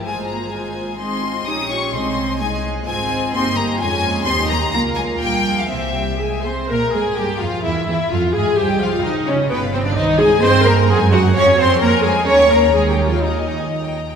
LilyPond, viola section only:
\new Staff \with { instrumentName = "Viola section" } { \time 2/4 \key f \minor \tempo 4 = 128 << { f'4 f'4 | ees'8 f'8 g'8 f'8 | ees'4 ees'4 | f'4 ees'4 |
f'4 g'4 | f'2 | e'8 g'8 aes'8 c''8 | bes'8 aes'8 g'8 f'8 |
e'8 e'8 f'8 aes'8 | g'8 f'8 ees'8 des'8 | b8 c'16 d'16 ees'8 aes'8 | \key ees \mixolydian c''8 bes'8 aes'8 ges'8 |
des''8 c''8 bes'8 aes'8 | des''8 bes'8 \tuplet 3/2 { aes'8 g'8 f'8 } | ees'4. r8 | } \\ { aes4 aes4 | aes4 des'4 | aes4 aes4 | c'4 bes4 |
des'4 ees'4 | bes2 | c'8 r4. | r2 |
r2 | r2 | r2 | r2 |
r2 | r2 | r2 | } >> }